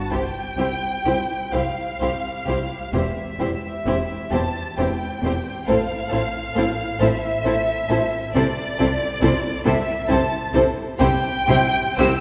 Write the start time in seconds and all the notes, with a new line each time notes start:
Already playing: F#4 A5
0.11 C2 C4 E4 G4 C5 G5
0.58 C2 C4 E4 G4 C5
1.05 C2 C4 E4 G4 C5
1.51 C2 C4 E4 G4 C5 F5
2.01 C2 C4 E4 G4 C5
2.46 C2 C4 E4 G4 C5
2.93 E1 E2 C4 E4 G4 C5 E5
3.40 E1 E2 C4 E4 G4 C5
3.86 E1 E2 C4 E4 G4 C5
4.30 E1 E2 C4 E4 G4 C5 A5
4.78 E1 E2 C4 E4 G4 C5 G5
5.22 E1 E2 C4 E4 G4 C5
5.67 A1 A2 C4 E4 A4 C5 F5
6.10 A1 A2 C4 E4 A4 C5
6.55 A1 A2 C4 E4 A4 C5
6.99 A1 A2 C4 E4 A4 C5 E5
7.44 A1 A2 C4 E4 A4 C5
7.89 A1 A2 C4 E4 A4 C5
8.34 C2 C3 C4 E4 A4 C5 D5
8.78 C2 C3 C4 E4 A4 C5
9.21 C2 C3 C4 E4 A4 C5
9.65 C2 C3 C4 E4 A4 C5 E5
10.08 C2 C3 C4 E4 A4 C5 A5
10.54 C2 C3 C4 E4 A4 C5
10.99 C2 C3 C4 E4 G4 C5 G5
11.47 C2 C3 C4 E4 G4 C5
11.98 C2 C3 C4 E4 G4 C5 E6